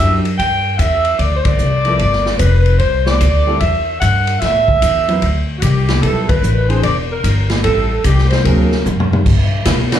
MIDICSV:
0, 0, Header, 1, 6, 480
1, 0, Start_track
1, 0, Key_signature, 1, "major"
1, 0, Tempo, 403226
1, 1420, Time_signature, 4, 2, 24, 8
1, 11898, End_track
2, 0, Start_track
2, 0, Title_t, "Saxophone section"
2, 0, Program_c, 0, 65
2, 0, Note_on_c, 0, 76, 93
2, 157, Note_off_c, 0, 76, 0
2, 454, Note_on_c, 0, 79, 98
2, 903, Note_off_c, 0, 79, 0
2, 923, Note_on_c, 0, 76, 84
2, 1411, Note_off_c, 0, 76, 0
2, 1413, Note_on_c, 0, 74, 87
2, 1605, Note_off_c, 0, 74, 0
2, 1626, Note_on_c, 0, 72, 68
2, 1707, Note_on_c, 0, 74, 103
2, 1734, Note_off_c, 0, 72, 0
2, 2831, Note_on_c, 0, 71, 82
2, 2846, Note_off_c, 0, 74, 0
2, 3322, Note_on_c, 0, 72, 93
2, 3325, Note_off_c, 0, 71, 0
2, 3620, Note_off_c, 0, 72, 0
2, 3635, Note_on_c, 0, 74, 88
2, 4289, Note_on_c, 0, 76, 85
2, 4290, Note_off_c, 0, 74, 0
2, 4740, Note_off_c, 0, 76, 0
2, 4763, Note_on_c, 0, 78, 90
2, 5217, Note_off_c, 0, 78, 0
2, 5230, Note_on_c, 0, 76, 92
2, 6409, Note_off_c, 0, 76, 0
2, 6646, Note_on_c, 0, 66, 62
2, 6690, Note_on_c, 0, 67, 75
2, 6702, Note_off_c, 0, 66, 0
2, 7169, Note_on_c, 0, 69, 79
2, 7176, Note_off_c, 0, 67, 0
2, 7465, Note_off_c, 0, 69, 0
2, 7480, Note_on_c, 0, 71, 89
2, 7933, Note_off_c, 0, 71, 0
2, 7965, Note_on_c, 0, 72, 79
2, 8136, Note_on_c, 0, 74, 78
2, 8137, Note_off_c, 0, 72, 0
2, 8278, Note_off_c, 0, 74, 0
2, 8460, Note_on_c, 0, 70, 80
2, 8904, Note_off_c, 0, 70, 0
2, 9091, Note_on_c, 0, 69, 88
2, 9543, Note_off_c, 0, 69, 0
2, 9583, Note_on_c, 0, 67, 79
2, 9869, Note_on_c, 0, 72, 82
2, 9874, Note_off_c, 0, 67, 0
2, 10036, Note_off_c, 0, 72, 0
2, 10049, Note_on_c, 0, 70, 68
2, 10501, Note_off_c, 0, 70, 0
2, 11824, Note_on_c, 0, 57, 82
2, 11826, Note_on_c, 0, 62, 75
2, 11827, Note_on_c, 0, 66, 80
2, 11830, Note_on_c, 0, 71, 88
2, 11898, Note_off_c, 0, 57, 0
2, 11898, Note_off_c, 0, 62, 0
2, 11898, Note_off_c, 0, 66, 0
2, 11898, Note_off_c, 0, 71, 0
2, 11898, End_track
3, 0, Start_track
3, 0, Title_t, "Grand piano"
3, 0, Program_c, 1, 0
3, 0, Note_on_c, 1, 54, 48
3, 0, Note_on_c, 1, 62, 48
3, 0, Note_on_c, 1, 64, 49
3, 2, Note_on_c, 1, 67, 58
3, 261, Note_off_c, 1, 54, 0
3, 267, Note_off_c, 1, 64, 0
3, 268, Note_off_c, 1, 62, 0
3, 273, Note_off_c, 1, 67, 0
3, 2204, Note_on_c, 1, 53, 54
3, 2212, Note_on_c, 1, 59, 51
3, 2220, Note_on_c, 1, 64, 51
3, 2229, Note_on_c, 1, 69, 57
3, 2358, Note_off_c, 1, 53, 0
3, 2363, Note_off_c, 1, 59, 0
3, 2367, Note_off_c, 1, 64, 0
3, 2371, Note_off_c, 1, 69, 0
3, 4128, Note_on_c, 1, 55, 59
3, 4134, Note_on_c, 1, 60, 52
3, 4142, Note_on_c, 1, 64, 53
3, 4146, Note_on_c, 1, 69, 66
3, 4280, Note_off_c, 1, 55, 0
3, 4283, Note_off_c, 1, 60, 0
3, 4287, Note_off_c, 1, 64, 0
3, 4289, Note_off_c, 1, 69, 0
3, 6049, Note_on_c, 1, 54, 57
3, 6056, Note_on_c, 1, 60, 51
3, 6067, Note_on_c, 1, 64, 55
3, 6082, Note_on_c, 1, 71, 60
3, 6202, Note_off_c, 1, 54, 0
3, 6205, Note_off_c, 1, 60, 0
3, 6210, Note_off_c, 1, 64, 0
3, 6218, Note_off_c, 1, 71, 0
3, 7175, Note_on_c, 1, 55, 52
3, 7183, Note_on_c, 1, 59, 48
3, 7188, Note_on_c, 1, 64, 50
3, 7201, Note_on_c, 1, 69, 57
3, 7459, Note_off_c, 1, 55, 0
3, 7464, Note_off_c, 1, 59, 0
3, 7466, Note_off_c, 1, 64, 0
3, 7472, Note_off_c, 1, 69, 0
3, 7953, Note_on_c, 1, 52, 61
3, 7963, Note_on_c, 1, 60, 52
3, 7969, Note_on_c, 1, 62, 57
3, 7974, Note_on_c, 1, 68, 60
3, 8114, Note_off_c, 1, 52, 0
3, 8119, Note_off_c, 1, 60, 0
3, 8122, Note_off_c, 1, 62, 0
3, 8125, Note_off_c, 1, 68, 0
3, 9084, Note_on_c, 1, 55, 49
3, 9093, Note_on_c, 1, 60, 46
3, 9099, Note_on_c, 1, 64, 44
3, 9105, Note_on_c, 1, 69, 54
3, 9375, Note_off_c, 1, 55, 0
3, 9379, Note_off_c, 1, 60, 0
3, 9382, Note_off_c, 1, 64, 0
3, 9385, Note_off_c, 1, 69, 0
3, 10049, Note_on_c, 1, 54, 51
3, 10064, Note_on_c, 1, 62, 46
3, 10065, Note_on_c, 1, 60, 50
3, 10073, Note_on_c, 1, 68, 59
3, 10336, Note_off_c, 1, 54, 0
3, 10344, Note_off_c, 1, 62, 0
3, 10345, Note_off_c, 1, 60, 0
3, 10349, Note_off_c, 1, 68, 0
3, 11898, End_track
4, 0, Start_track
4, 0, Title_t, "Trombone section"
4, 0, Program_c, 2, 61
4, 10052, Note_on_c, 2, 54, 57
4, 10053, Note_on_c, 2, 48, 48
4, 10058, Note_on_c, 2, 58, 55
4, 10503, Note_off_c, 2, 48, 0
4, 10503, Note_off_c, 2, 54, 0
4, 10506, Note_off_c, 2, 58, 0
4, 11800, Note_on_c, 2, 54, 66
4, 11811, Note_on_c, 2, 59, 69
4, 11816, Note_on_c, 2, 50, 69
4, 11898, Note_off_c, 2, 50, 0
4, 11898, Note_off_c, 2, 54, 0
4, 11898, Note_off_c, 2, 59, 0
4, 11898, End_track
5, 0, Start_track
5, 0, Title_t, "Upright bass"
5, 0, Program_c, 3, 32
5, 0, Note_on_c, 3, 42, 79
5, 450, Note_off_c, 3, 42, 0
5, 469, Note_on_c, 3, 43, 69
5, 930, Note_off_c, 3, 43, 0
5, 937, Note_on_c, 3, 40, 85
5, 1404, Note_off_c, 3, 40, 0
5, 1414, Note_on_c, 3, 38, 75
5, 1882, Note_off_c, 3, 38, 0
5, 1897, Note_on_c, 3, 36, 74
5, 2363, Note_off_c, 3, 36, 0
5, 2370, Note_on_c, 3, 31, 75
5, 2840, Note_off_c, 3, 31, 0
5, 2857, Note_on_c, 3, 29, 90
5, 3323, Note_off_c, 3, 29, 0
5, 3331, Note_on_c, 3, 36, 66
5, 3800, Note_off_c, 3, 36, 0
5, 3819, Note_on_c, 3, 38, 79
5, 4285, Note_off_c, 3, 38, 0
5, 4301, Note_on_c, 3, 40, 71
5, 4766, Note_off_c, 3, 40, 0
5, 4782, Note_on_c, 3, 43, 81
5, 5246, Note_off_c, 3, 43, 0
5, 5265, Note_on_c, 3, 45, 64
5, 5728, Note_off_c, 3, 45, 0
5, 5742, Note_on_c, 3, 40, 77
5, 6207, Note_off_c, 3, 40, 0
5, 6216, Note_on_c, 3, 38, 74
5, 6684, Note_off_c, 3, 38, 0
5, 6695, Note_on_c, 3, 36, 93
5, 7163, Note_off_c, 3, 36, 0
5, 7174, Note_on_c, 3, 35, 69
5, 7643, Note_off_c, 3, 35, 0
5, 7652, Note_on_c, 3, 33, 84
5, 8122, Note_off_c, 3, 33, 0
5, 8139, Note_on_c, 3, 28, 76
5, 8606, Note_off_c, 3, 28, 0
5, 8616, Note_on_c, 3, 31, 79
5, 9085, Note_off_c, 3, 31, 0
5, 9097, Note_on_c, 3, 33, 69
5, 9565, Note_off_c, 3, 33, 0
5, 9574, Note_on_c, 3, 36, 86
5, 10043, Note_off_c, 3, 36, 0
5, 10056, Note_on_c, 3, 38, 74
5, 10524, Note_off_c, 3, 38, 0
5, 10543, Note_on_c, 3, 42, 82
5, 11007, Note_off_c, 3, 42, 0
5, 11024, Note_on_c, 3, 43, 75
5, 11488, Note_off_c, 3, 43, 0
5, 11499, Note_on_c, 3, 47, 91
5, 11898, Note_off_c, 3, 47, 0
5, 11898, End_track
6, 0, Start_track
6, 0, Title_t, "Drums"
6, 299, Note_on_c, 9, 51, 43
6, 418, Note_off_c, 9, 51, 0
6, 466, Note_on_c, 9, 36, 18
6, 469, Note_on_c, 9, 51, 55
6, 585, Note_off_c, 9, 36, 0
6, 588, Note_off_c, 9, 51, 0
6, 941, Note_on_c, 9, 44, 50
6, 941, Note_on_c, 9, 51, 63
6, 942, Note_on_c, 9, 36, 27
6, 1060, Note_off_c, 9, 44, 0
6, 1060, Note_off_c, 9, 51, 0
6, 1061, Note_off_c, 9, 36, 0
6, 1245, Note_on_c, 9, 51, 41
6, 1364, Note_off_c, 9, 51, 0
6, 1418, Note_on_c, 9, 36, 18
6, 1418, Note_on_c, 9, 51, 49
6, 1537, Note_off_c, 9, 36, 0
6, 1537, Note_off_c, 9, 51, 0
6, 1724, Note_on_c, 9, 51, 65
6, 1728, Note_on_c, 9, 36, 69
6, 1843, Note_off_c, 9, 51, 0
6, 1847, Note_off_c, 9, 36, 0
6, 1889, Note_on_c, 9, 44, 45
6, 2008, Note_off_c, 9, 44, 0
6, 2199, Note_on_c, 9, 51, 35
6, 2318, Note_off_c, 9, 51, 0
6, 2373, Note_on_c, 9, 36, 18
6, 2373, Note_on_c, 9, 51, 51
6, 2492, Note_off_c, 9, 36, 0
6, 2492, Note_off_c, 9, 51, 0
6, 2534, Note_on_c, 9, 38, 25
6, 2653, Note_off_c, 9, 38, 0
6, 2691, Note_on_c, 9, 38, 39
6, 2810, Note_off_c, 9, 38, 0
6, 2847, Note_on_c, 9, 44, 59
6, 2847, Note_on_c, 9, 51, 61
6, 2853, Note_on_c, 9, 36, 24
6, 2966, Note_off_c, 9, 44, 0
6, 2966, Note_off_c, 9, 51, 0
6, 2972, Note_off_c, 9, 36, 0
6, 3162, Note_on_c, 9, 51, 41
6, 3281, Note_off_c, 9, 51, 0
6, 3327, Note_on_c, 9, 51, 50
6, 3332, Note_on_c, 9, 36, 24
6, 3446, Note_off_c, 9, 51, 0
6, 3451, Note_off_c, 9, 36, 0
6, 3647, Note_on_c, 9, 38, 47
6, 3766, Note_off_c, 9, 38, 0
6, 3815, Note_on_c, 9, 44, 57
6, 3815, Note_on_c, 9, 51, 65
6, 3817, Note_on_c, 9, 36, 23
6, 3935, Note_off_c, 9, 44, 0
6, 3935, Note_off_c, 9, 51, 0
6, 3936, Note_off_c, 9, 36, 0
6, 4290, Note_on_c, 9, 51, 55
6, 4298, Note_on_c, 9, 36, 23
6, 4409, Note_off_c, 9, 51, 0
6, 4417, Note_off_c, 9, 36, 0
6, 4779, Note_on_c, 9, 44, 52
6, 4779, Note_on_c, 9, 51, 60
6, 4780, Note_on_c, 9, 36, 22
6, 4898, Note_off_c, 9, 44, 0
6, 4898, Note_off_c, 9, 51, 0
6, 4899, Note_off_c, 9, 36, 0
6, 5086, Note_on_c, 9, 51, 42
6, 5205, Note_off_c, 9, 51, 0
6, 5256, Note_on_c, 9, 51, 54
6, 5258, Note_on_c, 9, 38, 34
6, 5261, Note_on_c, 9, 36, 18
6, 5375, Note_off_c, 9, 51, 0
6, 5378, Note_off_c, 9, 38, 0
6, 5380, Note_off_c, 9, 36, 0
6, 5573, Note_on_c, 9, 36, 48
6, 5692, Note_off_c, 9, 36, 0
6, 5737, Note_on_c, 9, 44, 58
6, 5737, Note_on_c, 9, 51, 65
6, 5741, Note_on_c, 9, 36, 18
6, 5857, Note_off_c, 9, 44, 0
6, 5857, Note_off_c, 9, 51, 0
6, 5860, Note_off_c, 9, 36, 0
6, 6054, Note_on_c, 9, 51, 39
6, 6173, Note_off_c, 9, 51, 0
6, 6214, Note_on_c, 9, 51, 54
6, 6216, Note_on_c, 9, 36, 18
6, 6333, Note_off_c, 9, 51, 0
6, 6335, Note_off_c, 9, 36, 0
6, 6688, Note_on_c, 9, 44, 54
6, 6688, Note_on_c, 9, 51, 69
6, 6694, Note_on_c, 9, 36, 18
6, 6808, Note_off_c, 9, 44, 0
6, 6808, Note_off_c, 9, 51, 0
6, 6813, Note_off_c, 9, 36, 0
6, 7005, Note_on_c, 9, 51, 42
6, 7007, Note_on_c, 9, 38, 52
6, 7124, Note_off_c, 9, 51, 0
6, 7126, Note_off_c, 9, 38, 0
6, 7176, Note_on_c, 9, 36, 23
6, 7177, Note_on_c, 9, 51, 56
6, 7295, Note_off_c, 9, 36, 0
6, 7296, Note_off_c, 9, 51, 0
6, 7489, Note_on_c, 9, 51, 67
6, 7490, Note_on_c, 9, 36, 69
6, 7608, Note_off_c, 9, 51, 0
6, 7609, Note_off_c, 9, 36, 0
6, 7659, Note_on_c, 9, 44, 61
6, 7778, Note_off_c, 9, 44, 0
6, 7972, Note_on_c, 9, 51, 41
6, 8091, Note_off_c, 9, 51, 0
6, 8133, Note_on_c, 9, 51, 57
6, 8136, Note_on_c, 9, 36, 19
6, 8252, Note_off_c, 9, 51, 0
6, 8255, Note_off_c, 9, 36, 0
6, 8617, Note_on_c, 9, 36, 19
6, 8620, Note_on_c, 9, 44, 54
6, 8620, Note_on_c, 9, 51, 64
6, 8736, Note_off_c, 9, 36, 0
6, 8739, Note_off_c, 9, 44, 0
6, 8739, Note_off_c, 9, 51, 0
6, 8923, Note_on_c, 9, 51, 40
6, 8926, Note_on_c, 9, 38, 52
6, 9042, Note_off_c, 9, 51, 0
6, 9045, Note_off_c, 9, 38, 0
6, 9093, Note_on_c, 9, 51, 56
6, 9096, Note_on_c, 9, 36, 15
6, 9212, Note_off_c, 9, 51, 0
6, 9215, Note_off_c, 9, 36, 0
6, 9573, Note_on_c, 9, 44, 55
6, 9573, Note_on_c, 9, 51, 63
6, 9576, Note_on_c, 9, 36, 23
6, 9692, Note_off_c, 9, 44, 0
6, 9692, Note_off_c, 9, 51, 0
6, 9695, Note_off_c, 9, 36, 0
6, 9740, Note_on_c, 9, 38, 26
6, 9859, Note_off_c, 9, 38, 0
6, 9886, Note_on_c, 9, 51, 38
6, 9907, Note_on_c, 9, 38, 36
6, 10005, Note_off_c, 9, 51, 0
6, 10026, Note_off_c, 9, 38, 0
6, 10060, Note_on_c, 9, 36, 26
6, 10061, Note_on_c, 9, 51, 57
6, 10179, Note_off_c, 9, 36, 0
6, 10181, Note_off_c, 9, 51, 0
6, 10378, Note_on_c, 9, 38, 31
6, 10497, Note_off_c, 9, 38, 0
6, 10542, Note_on_c, 9, 44, 51
6, 10545, Note_on_c, 9, 47, 43
6, 10661, Note_off_c, 9, 44, 0
6, 10664, Note_off_c, 9, 47, 0
6, 10712, Note_on_c, 9, 47, 53
6, 10831, Note_off_c, 9, 47, 0
6, 10869, Note_on_c, 9, 47, 70
6, 10988, Note_off_c, 9, 47, 0
6, 11022, Note_on_c, 9, 49, 70
6, 11023, Note_on_c, 9, 36, 75
6, 11141, Note_off_c, 9, 49, 0
6, 11142, Note_off_c, 9, 36, 0
6, 11492, Note_on_c, 9, 44, 53
6, 11492, Note_on_c, 9, 51, 75
6, 11494, Note_on_c, 9, 38, 77
6, 11500, Note_on_c, 9, 36, 19
6, 11611, Note_off_c, 9, 44, 0
6, 11611, Note_off_c, 9, 51, 0
6, 11613, Note_off_c, 9, 38, 0
6, 11619, Note_off_c, 9, 36, 0
6, 11809, Note_on_c, 9, 51, 61
6, 11812, Note_on_c, 9, 38, 70
6, 11898, Note_off_c, 9, 38, 0
6, 11898, Note_off_c, 9, 51, 0
6, 11898, End_track
0, 0, End_of_file